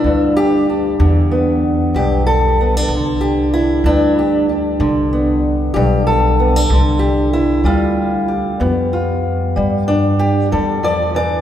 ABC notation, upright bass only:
X:1
M:12/8
L:1/8
Q:3/8=63
K:Gmix
V:1 name="Upright bass" clef=bass
D,,3 E,,3 B,,,3 C,,3 | D,,3 C,,3 B,,,3 C,,3 | D,,3 F,,3 G,,3 E,,3 |]